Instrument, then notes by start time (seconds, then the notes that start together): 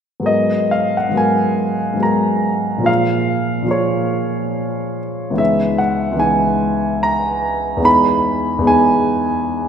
grand piano
0.20 G#2 F#3 B3 G#4
0.24 A#4 D#5
0.71 F5
0.97 F#5
1.09 G#2 F#3
1.13 B3 G#4
1.17 A#4 G#5
1.94 G#2 F#3 B3
1.99 G#4 A#4 A#5
2.78 A#2 F3 A#3
2.84 F4 G#4 F5
3.62 A#2 F3 A#3
3.68 F4 G#4 C#5
5.30 C#2 E3 B3
5.36 D#4 G#4 E5
5.78 F#5
6.11 C#2 E3 B3
6.17 D#4 G#4 G#5
7.03 A#5
7.77 E2 G#3 B3
7.83 D#4 G#4 B5
8.59 E2 G#3
8.63 B3 D#4 G#4
8.67 G#5